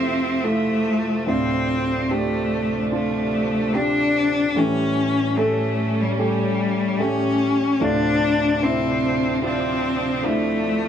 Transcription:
Already playing: grand piano F2 C3 A3 E4 F4 G4, string section C3 F3 E5, cello C4
0.43 grand piano A3 E4 F4, cello A3
1.25 grand piano D2 A2 C4 D4 F4, string section C3 D4, cello C4
2.09 cello A3, grand piano C4 D4 G4
2.91 cello A3, grand piano C4 D4 F4
3.73 grand piano C4 D4 G4, cello D4
4.56 grand piano A2 E3 A3 C#4 G4, string section A2 G3 C#4, cello C#4
5.37 grand piano A3 C#4 A4, cello A3
6.01 cello G3
6.18 cello G3, grand piano A3 C#4 G4
6.98 grand piano A3 C#4 G4, cello C#4
7.78 grand piano D2 A2 C4 D4 F4, string section C3 F3 D4
7.83 cello D4
8.62 grand piano C4 D4 E4, cello C4
9.42 grand piano C4 D4 F4, cello C4
10.23 cello A3, grand piano C4 D4 E4

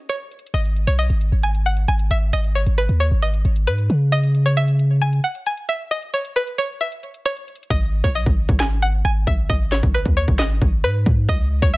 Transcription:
0.09 synth pluck C#5, closed hi-hat
0.32 closed hi-hat
0.39 closed hi-hat
0.46 closed hi-hat
0.54 808-style bass G#1, synth pluck D#5, closed hi-hat
0.65 closed hi-hat
0.76 closed hi-hat
0.87 808-style bass B1, synth pluck C#5, closed hi-hat
0.99 synth pluck D#5, closed hi-hat
1.10 808-style bass G#1, closed hi-hat
1.21 closed hi-hat
1.32 808-style bass G#1
1.43 synth pluck G#5, closed hi-hat
1.55 closed hi-hat
1.66 synth pluck F#5, closed hi-hat
1.77 closed hi-hat
1.88 808-style bass G#1, synth pluck G#5, closed hi-hat
1.99 closed hi-hat
2.11 808-style bass G#1, synth pluck E5, closed hi-hat
2.33 808-style bass G#1, synth pluck D#5, closed hi-hat
2.44 closed hi-hat
2.55 synth pluck C#5, closed hi-hat
2.67 808-style bass G#1, closed hi-hat
2.78 synth pluck B4, closed hi-hat
2.89 808-style bass D#2, closed hi-hat
3.00 synth pluck C#5, closed hi-hat
3.11 808-style bass G#1
3.22 synth pluck D#5, closed hi-hat
3.34 closed hi-hat
3.45 808-style bass G#1, closed hi-hat
3.56 closed hi-hat
3.67 808-style bass G#2, synth pluck B4, closed hi-hat
3.78 closed hi-hat
3.90 808-style bass C#3, closed hi-hat
4.12 synth pluck D#5, closed hi-hat
4.23 closed hi-hat
4.35 closed hi-hat
4.46 synth pluck C#5, closed hi-hat
4.57 synth pluck E5, closed hi-hat
4.68 closed hi-hat
4.79 closed hi-hat
5.02 synth pluck G#5, closed hi-hat
5.13 closed hi-hat
5.24 synth pluck F#5, closed hi-hat
5.35 closed hi-hat
5.46 synth pluck G#5, closed hi-hat
5.57 closed hi-hat
5.69 synth pluck E5, closed hi-hat
5.91 synth pluck D#5, closed hi-hat
6.02 closed hi-hat
6.14 synth pluck C#5, closed hi-hat
6.25 closed hi-hat
6.36 synth pluck B4, closed hi-hat
6.47 closed hi-hat
6.58 synth pluck C#5, closed hi-hat
6.81 synth pluck E5, closed hi-hat
6.92 closed hi-hat
7.03 closed hi-hat
7.14 closed hi-hat
7.25 synth pluck C#5, closed hi-hat
7.37 closed hi-hat
7.48 closed hi-hat
7.55 closed hi-hat
7.63 closed hi-hat
7.70 808-style bass G#1, synth pluck D#5, kick
8.04 808-style bass B1, synth pluck C#5, kick
8.15 synth pluck D#5
8.26 808-style bass G#1, kick
8.49 808-style bass G#1, kick
8.60 synth pluck G#5, snare, clap
8.82 synth pluck F#5
9.05 808-style bass G#1, synth pluck G#5
9.27 808-style bass G#1, synth pluck E5, kick
9.50 808-style bass G#1, synth pluck D#5, kick
9.72 synth pluck C#5, snare, clap
9.83 808-style bass G#1, kick
9.94 synth pluck B4
10.05 808-style bass D#2, kick
10.17 synth pluck C#5
10.28 808-style bass G#1, kick
10.39 synth pluck D#5, snare, clap
10.62 808-style bass G#1, kick
10.84 808-style bass G#2, synth pluck B4
11.06 808-style bass G#2, kick
11.29 808-style bass C#2, synth pluck D#5, kick
11.62 808-style bass C#2, synth pluck C#5, kick
11.74 synth pluck E5

